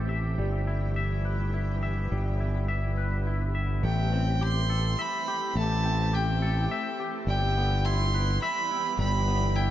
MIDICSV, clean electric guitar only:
0, 0, Header, 1, 2, 480
1, 0, Start_track
1, 0, Key_signature, 0, "minor"
1, 0, Tempo, 573066
1, 328, Time_signature, 3, 2, 24, 8
1, 8129, End_track
2, 0, Start_track
2, 0, Title_t, "Clean electric guitar"
2, 0, Program_c, 0, 27
2, 0, Note_on_c, 0, 67, 48
2, 0, Note_on_c, 0, 69, 49
2, 75, Note_on_c, 0, 76, 47
2, 321, Note_on_c, 0, 55, 49
2, 324, Note_off_c, 0, 69, 0
2, 561, Note_off_c, 0, 67, 0
2, 564, Note_on_c, 0, 64, 49
2, 802, Note_off_c, 0, 76, 0
2, 806, Note_on_c, 0, 76, 54
2, 1048, Note_on_c, 0, 71, 49
2, 1285, Note_off_c, 0, 64, 0
2, 1288, Note_on_c, 0, 64, 47
2, 1521, Note_off_c, 0, 76, 0
2, 1531, Note_on_c, 0, 76, 51
2, 1769, Note_off_c, 0, 55, 0
2, 1773, Note_on_c, 0, 55, 52
2, 2003, Note_off_c, 0, 64, 0
2, 2014, Note_on_c, 0, 64, 45
2, 2238, Note_off_c, 0, 76, 0
2, 2248, Note_on_c, 0, 76, 57
2, 2254, Note_off_c, 0, 71, 0
2, 2492, Note_on_c, 0, 71, 45
2, 2729, Note_off_c, 0, 64, 0
2, 2739, Note_on_c, 0, 64, 51
2, 2962, Note_off_c, 0, 76, 0
2, 2972, Note_on_c, 0, 76, 53
2, 2976, Note_off_c, 0, 55, 0
2, 3209, Note_on_c, 0, 57, 53
2, 3215, Note_off_c, 0, 76, 0
2, 3216, Note_off_c, 0, 71, 0
2, 3219, Note_off_c, 0, 64, 0
2, 3455, Note_on_c, 0, 60, 57
2, 3697, Note_on_c, 0, 67, 59
2, 3934, Note_on_c, 0, 69, 52
2, 4178, Note_on_c, 0, 76, 63
2, 4414, Note_off_c, 0, 57, 0
2, 4418, Note_off_c, 0, 67, 0
2, 4421, Note_on_c, 0, 67, 59
2, 4656, Note_off_c, 0, 60, 0
2, 4660, Note_on_c, 0, 57, 61
2, 4901, Note_on_c, 0, 60, 57
2, 5132, Note_off_c, 0, 67, 0
2, 5135, Note_off_c, 0, 69, 0
2, 5135, Note_on_c, 0, 67, 60
2, 5379, Note_on_c, 0, 69, 60
2, 5620, Note_off_c, 0, 76, 0
2, 5623, Note_on_c, 0, 76, 68
2, 5857, Note_off_c, 0, 57, 0
2, 5857, Note_off_c, 0, 67, 0
2, 5860, Note_on_c, 0, 67, 54
2, 6096, Note_off_c, 0, 60, 0
2, 6096, Note_off_c, 0, 69, 0
2, 6101, Note_on_c, 0, 55, 61
2, 6345, Note_on_c, 0, 59, 59
2, 6577, Note_off_c, 0, 67, 0
2, 6580, Note_on_c, 0, 64, 62
2, 6821, Note_on_c, 0, 71, 55
2, 7053, Note_off_c, 0, 76, 0
2, 7056, Note_on_c, 0, 76, 71
2, 7294, Note_off_c, 0, 64, 0
2, 7297, Note_on_c, 0, 64, 58
2, 7531, Note_off_c, 0, 55, 0
2, 7534, Note_off_c, 0, 59, 0
2, 7534, Note_on_c, 0, 55, 58
2, 7770, Note_on_c, 0, 59, 55
2, 8003, Note_off_c, 0, 64, 0
2, 8006, Note_on_c, 0, 64, 64
2, 8010, Note_off_c, 0, 71, 0
2, 8129, Note_off_c, 0, 55, 0
2, 8129, Note_off_c, 0, 59, 0
2, 8129, Note_off_c, 0, 64, 0
2, 8129, Note_off_c, 0, 76, 0
2, 8129, End_track
0, 0, End_of_file